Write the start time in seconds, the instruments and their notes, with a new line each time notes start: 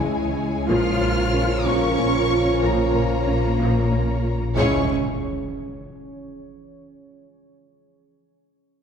Already playing: sub bass C#2, trombone section C#3 G#3, ambient pad G#3 C#4 E4 C#5, cello section G#3, french horn section C#4 E4, viola section E4, violin section G#4 C#5 G#5
0.04 double bass section C#2, analog synth bass C#2, synth arpeggio sound E3, viola section G#3
0.37 analog synth bass C#2
0.69 double bass section A#1, sub bass A#1, analog synth bass A#2, trombone section C#3 F3, viola section F3 F4, ambient pad F3 C#4 F4 C#5, synth arpeggio sound A#3, french horn section C#4 F4, cello section F4, violin section A#4 C#5 F6
1.01 double bass section A#1, analog synth bass A#2, viola section A#3, synth arpeggio sound A#4
1.34 double bass section A#1, analog synth bass A#2, synth arpeggio sound C#4, viola section C#4
1.66 double bass section A#1, analog synth bass A#2, viola section F3, synth arpeggio sound A#3, cello section C#4, violin section C#6
1.98 double bass section A#1, analog synth bass A#2, viola section A#3, synth arpeggio sound C#4
2.31 analog synth bass A#2
2.63 double bass section A#1, analog synth bass A#2, viola section F3, synth arpeggio sound A#3, cello section A#3, violin section A#5
2.95 double bass section A#1, analog synth bass A#2, viola section A#3, synth arpeggio sound A#4
3.27 double bass section A#1, analog synth bass A#2, viola section C#4, synth arpeggio sound C#4
3.59 double bass section A#1, analog synth bass A#2, viola section F3, synth arpeggio sound A#3
3.91 double bass section A#1, analog synth bass A#2, viola section A#3, synth arpeggio sound C#4
4.24 analog synth bass A#2
4.56 double bass section C#2, sub bass C#2, trombone section C#3 G#3, cello section C#4, french horn section C#4 E4, viola section C#4 E4, violin section G#4 C#5 C#6, impact